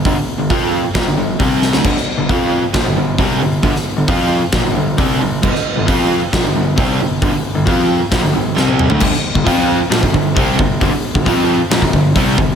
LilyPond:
<<
  \new Staff \with { instrumentName = "Overdriven electric guitar" } { \clef bass \time 4/4 \key g \minor \tempo 4 = 134 <g, d>16 r8 <g, d>16 <f c' f'>8. r16 <bes, f>16 <g, d>16 <g, d>8 <c g c'>8. <d a>16 | <g, d>16 r8 <g, d>16 <f c' f'>8. r16 <bes, f>16 <g, d>16 <g, d>8 <c g c'>8 <g, d>8 | <g, d>16 r8 <g, d>16 <f c' f'>8. r16 <bes, f>16 <g, d>16 <g, d>8 <c g c'>8 <g, d>8 | <g, d>16 r8 <g, d>16 <f c' f'>8. r16 <bes, f>16 <g, d>16 <g, d>8 <c g c'>8 <g, d>8 |
<g, d>16 r8 <g, d>16 <f c' f'>8. r16 <bes, f>16 <g, d>16 <g, d>8 <c g c'>8. <d a>16 | <g, d>16 r8 <g, d>16 <f c' f'>8. r16 <bes, f>16 <g, d>16 <g, d>8 <c g c'>8 <g, d>8 | <g, d>16 r8 <g, d>16 <f c' f'>8. r16 <bes, f>16 <g, d>16 <g, d>8 <c g c'>8 <g, d>8 | }
  \new Staff \with { instrumentName = "Overdriven electric guitar" } { \clef bass \time 4/4 \key g \minor <g, d>16 r8 <g, d>16 <f c' f'>8. r16 <bes, f>16 <g, d>16 <g, d>8 <c g c'>8. <d a>16 | <g, d>16 r8 <g, d>16 <f c' f'>8. r16 <bes, f>16 <g, d>16 <g, d>8 <c g c'>8 <g, d>8 | <g, d>16 r8 <g, d>16 <f c' f'>8. r16 <bes, f>16 <g, d>16 <g, d>8 <c g c'>8 <g, d>8 | <g, d>16 r8 <g, d>16 <f c' f'>8. r16 <bes, f>16 <g, d>16 <g, d>8 <c g c'>8 <g, d>8 |
<g, d>16 r8 <g, d>16 <f c' f'>8. r16 <bes, f>16 <g, d>16 <g, d>8 <c g c'>8. <d a>16 | <g, d>16 r8 <g, d>16 <f c' f'>8. r16 <bes, f>16 <g, d>16 <g, d>8 <c g c'>8 <g, d>8 | <g, d>16 r8 <g, d>16 <f c' f'>8. r16 <bes, f>16 <g, d>16 <g, d>8 <c g c'>8 <g, d>8 | }
  \new Staff \with { instrumentName = "Overdriven electric guitar" } { \clef bass \time 4/4 \key g \minor r1 | r1 | r1 | r1 |
r1 | <g, d>16 r8 <g, d>16 <f c' f'>8. r16 <bes, f>16 <g, d>16 <g, d>8 <c g c'>8 <g, d>8 | <g, d>16 r8 <g, d>16 <f c' f'>8. r16 <bes, f>16 <g, d>16 <g, d>8 <c g c'>8 <g, d>8 | }
  \new Staff \with { instrumentName = "Grand piano" } { \clef bass \time 4/4 \key g \minor g,,16 g,,8 g,,16 f,8. g,,16 bes,,16 g,,16 g,,8 c,8. d,16 | g,,16 g,,8 g,,16 f,8. g,,16 bes,,16 g,,16 g,,8 c,8 g,,8 | g,,16 g,,8 g,,16 f,8. g,,16 bes,,16 g,,16 g,,8 c,8 g,,8 | g,,16 g,,8 g,,16 f,8. g,,16 bes,,16 g,,16 g,,8 c,8 g,,8 |
g,,16 g,,8 g,,16 f,8. g,,16 bes,,16 g,,16 g,,8 c,8. d,16 | g,,16 g,,8 g,,16 f,8. g,,16 bes,,16 g,,16 g,,8 c,8 g,,8 | g,,16 g,,8 g,,16 f,8. g,,16 bes,,16 g,,16 g,,8 c,8 g,,8 | }
  \new DrumStaff \with { instrumentName = "Drums" } \drummode { \time 4/4 <hho bd>4 <hho bd>4 <hho bd sn>4 <hho bd>8 sn16 sn16 | <cymc bd>16 sn8. <hho bd>4 <hho bd sn>4 <hho bd>4 | <hho bd>16 sn8. <hho bd>4 <hho bd sn>4 <hho bd>4 | <cymc bd>16 sn8. <hho bd>4 <hho bd sn>4 <hho bd>4 |
<hho bd>4 <hho bd>4 <hho bd sn>4 sn16 tommh16 toml16 tomfh16 | <cymc bd>16 sn8 bd16 <hho bd>4 <hho sn>16 bd16 bd8 <hho bd>8 bd8 | <hho bd>8. bd16 <hho bd>4 <hho sn>16 bd16 bd8 <hho bd>8 bd8 | }
>>